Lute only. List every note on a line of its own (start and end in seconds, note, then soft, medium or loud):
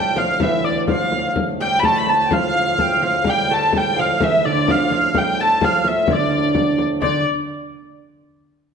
0.00 0.16 G3 medium
0.17 0.41 F3 medium
0.42 0.90 E3 medium
0.89 1.33 F3 medium
1.61 1.85 G3 medium
1.84 2.32 A3 loud
2.32 3.01 F3 medium
3.02 3.26 F3 medium
3.27 3.51 G3 medium
3.51 3.75 A3 medium
3.76 3.96 G3 medium
3.99 4.22 F3 medium
4.22 4.45 E3 medium
4.46 4.69 D3 medium
4.69 4.90 F3 medium
4.91 5.15 F3 medium
5.15 5.39 G3 medium
5.40 5.63 A3 medium
5.64 6.11 F3 medium
6.10 6.75 D3 medium
7.02 7.23 D3 loud